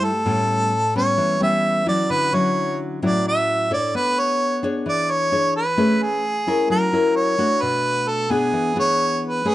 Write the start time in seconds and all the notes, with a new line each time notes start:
Already playing: G2 E4
0.04 A4
0.26 A2 G3 B3 C#4
0.95 G3 B3 C#4 C#5
1.17 E3
1.40 G3 B3 C#4 E5
1.86 F#3 C#4 E4 D5
2.10 D3 B4
2.33 F#3 C#4 E4 C#5
3.02 A2 F#3 C#4 E4 D5
3.28 E5
3.71 D4 A4 C#5 D5
3.95 B3 B4
4.19 C#5
4.63 D4 G#4 C#5
4.86 E3 D5
5.11 C#5
5.32 D4 G#4 C#5
5.56 B4
5.77 A3 C#4 G#4 B4
6.02 G#4
6.47 C#4 E4 A#4
6.70 F#3 A#4
6.93 C#4 E4 A#4
7.16 C#5
7.38 A3 D4 F#4
7.62 B2 B4
8.09 A4
8.30 B3 D4 G#4
8.53 E3
8.76 B3 D4 G#4 C#5
9.26 B4
9.45 A3 C#4 G#4 B4